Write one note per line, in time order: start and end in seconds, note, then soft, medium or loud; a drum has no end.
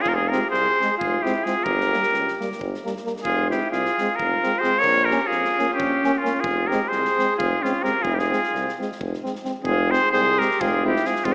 0.01 0.31 F1 medium
0.01 0.13 F4 medium
0.01 0.10 G#4 loud
0.06 0.16 A#4 medium
0.06 kick medium
0.12 0.32 F4 medium
0.12 0.17 G4 medium
0.12 0.30 G#4 loud
0.28 0.40 C4 medium
0.28 0.50 G4 medium
0.28 0.50 A#4 medium
0.32 0.41 G#3 medium
0.32 snare soft
0.50 0.67 C2 medium
0.50 0.96 G#4 medium
0.50 0.96 C5 loud
0.50 snare soft
0.79 0.89 G#3 medium
0.79 0.88 C4 medium
0.79 snare soft
0.98 1.14 F1 medium
0.98 1.24 F4 medium
0.98 1.24 G#4 medium
0.98 kick medium
1.22 1.34 G#3 medium
1.22 1.33 C4 medium
1.22 1.47 E4 medium
1.22 1.45 G4 medium
1.22 snare soft
1.44 1.54 G#3 medium
1.44 1.53 C4 medium
1.44 1.66 F4 medium
1.44 1.65 G#4 medium
1.44 snare soft
1.63 1.91 G1 medium
1.63 2.39 G4 medium
1.63 2.38 A#4 loud
1.63 kick medium
1.80 snare soft
1.92 2.01 G3 medium
1.92 2.00 A#3 medium
1.92 snare soft
2.03 snare soft
2.12 2.27 C#2 medium
2.12 snare soft
2.28 snare soft
2.39 2.49 G3 medium
2.39 2.48 A#3 medium
2.39 snare soft
2.52 snare soft
2.59 2.73 G1 medium
2.59 kick medium
2.74 snare soft
2.84 2.93 G3 medium
2.84 2.92 A#3 medium
2.84 snare soft
2.97 snare soft
3.05 3.13 G3 soft
3.05 3.13 A#3 medium
3.05 snare soft
3.16 snare soft
3.24 3.51 F1 medium
3.24 3.49 F4 medium
3.24 3.49 G#4 loud
3.24 kick medium
3.50 3.61 G#3 soft
3.50 3.60 C4 medium
3.50 3.70 E4 medium
3.50 3.70 G4 medium
3.50 snare soft
3.70 3.86 C2 medium
3.70 4.18 F4 medium
3.70 4.17 G#4 medium
3.70 snare soft
3.85 snare soft
3.98 4.08 G#3 medium
3.98 4.08 C4 soft
3.98 snare soft
4.15 4.62 F4 medium
4.15 4.60 A#4 medium
4.19 4.33 F1 medium
4.19 kick medium
4.43 4.52 G#3 medium
4.43 4.51 C4 medium
4.43 snare soft
4.59 4.83 G#4 medium
4.59 4.80 C5 loud
4.63 4.72 G#3 medium
4.63 4.71 C4 medium
4.63 snare soft
4.79 5.10 A#4 medium
4.79 5.06 C#5 loud
4.83 5.09 A#1 medium
4.83 kick medium
5.05 5.30 G4 medium
5.05 5.28 A#4 loud
5.11 5.20 A#3 medium
5.11 5.19 C#4 medium
5.11 snare soft
5.27 5.45 F2 medium
5.27 5.74 F4 medium
5.27 5.72 G#4 loud
5.31 snare soft
5.44 snare soft
5.58 5.67 A#3 medium
5.58 5.67 C#4 medium
5.58 snare soft
5.73 6.20 C#4 medium
5.73 6.19 G4 medium
5.79 5.92 A#1 medium
5.79 kick medium
6.03 6.12 A#3 medium
6.03 6.11 C#4 medium
6.03 snare soft
6.18 6.42 C#4 medium
6.18 6.41 F4 medium
6.22 6.32 A#3 medium
6.22 6.31 C#4 medium
6.22 snare soft
6.40 6.70 F1 medium
6.40 6.69 F4 medium
6.40 6.69 G#4 medium
6.44 kick medium
6.67 6.78 C4 medium
6.67 6.91 G4 medium
6.67 6.90 A#4 medium
6.71 6.80 G#3 medium
6.71 snare soft
6.88 7.06 C2 medium
6.88 7.37 G#4 loud
6.88 7.36 C5 loud
6.88 snare soft
7.05 snare soft
7.17 7.27 G#3 medium
7.17 7.25 C4 medium
7.17 snare soft
7.37 7.52 F1 medium
7.37 7.63 F4 medium
7.37 7.64 G#4 medium
7.37 kick medium
7.61 7.71 G#3 medium
7.61 7.72 C4 medium
7.61 7.84 C#4 medium
7.61 7.84 F4 medium
7.61 snare soft
7.82 7.93 G#3 medium
7.82 7.90 C4 medium
7.82 8.02 G4 medium
7.82 8.04 A#4 loud
7.82 snare soft
8.01 8.30 F1 medium
8.01 8.12 F4 medium
8.01 8.16 G#4 loud
8.01 kick medium
8.11 8.21 E4 medium
8.11 8.20 G4 medium
8.19 8.79 F4 medium
8.19 8.78 G#4 medium
8.19 snare soft
8.30 8.39 G#3 medium
8.30 8.38 C4 medium
8.30 snare soft
8.44 snare soft
8.51 8.66 C2 medium
8.51 snare soft
8.68 snare soft
8.78 8.88 G#3 medium
8.78 8.87 C4 soft
8.78 snare soft
8.92 snare soft
8.99 9.13 F1 medium
8.99 kick medium
9.14 snare soft
9.23 9.33 G#3 medium
9.23 9.32 C4 medium
9.23 snare soft
9.35 snare soft
9.44 9.53 G#3 soft
9.44 9.52 C4 medium
9.44 snare soft
9.63 9.90 F1 loud
9.63 9.75 G#3 medium
9.63 9.74 C4 soft
9.63 9.93 F4 medium
9.63 9.92 G#4 loud
9.63 kick medium
9.91 10.00 G#3 soft
9.91 9.99 C4 medium
9.91 10.12 G#4 medium
9.91 10.11 C5 loud
9.91 snare soft
10.11 10.39 C2 medium
10.11 10.23 G#3 medium
10.11 10.22 C4 medium
10.11 10.42 G#4 loud
10.11 10.40 C5 loud
10.11 snare soft
10.39 10.48 G#3 medium
10.39 10.47 C4 soft
10.39 10.63 G4 medium
10.39 10.62 A#4 medium
10.39 snare soft
10.51 snare soft
10.59 10.96 F1 medium
10.59 10.69 G#3 medium
10.59 10.70 C4 medium
10.59 10.84 F4 medium
10.59 10.85 G#4 medium
10.59 kick loud
10.83 10.92 G#3 medium
10.83 10.92 C4 medium
10.83 11.09 E4 medium
10.83 11.08 G4 medium
10.96 snare soft
11.04 11.13 G#3 medium
11.04 11.12 C4 medium
11.04 11.28 F4 medium
11.04 11.26 G#4 medium
11.04 snare soft
11.16 snare soft
11.24 11.35 F1 medium
11.24 11.35 G#3 medium
11.24 11.35 C4 medium
11.24 11.34 C4 medium
11.24 11.34 F4 medium
11.24 kick medium